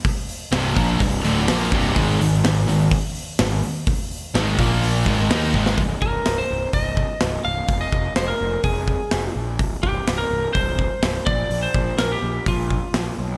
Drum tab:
HH |o-o-o-o-o-o-o-o-|o-o-o-o-o-o-o-o-|o-o-o-o-o-o-o---|o---o---o---o---|
SD |----o-------o--o|----o-------o---|----o-------o--o|----o-------o---|
BD |o-----o-o-----o-|o-------o-------|o-----o---o---o-|o-o-----o-o-----|

HH |o---o---o---o---|o---o---o---o---|o---o---o---o---|
SD |----o-------o---|----o-------o---|----o-------o---|
BD |o-o-----o-o-----|o-o-----o-o---o-|--o-----o-o-----|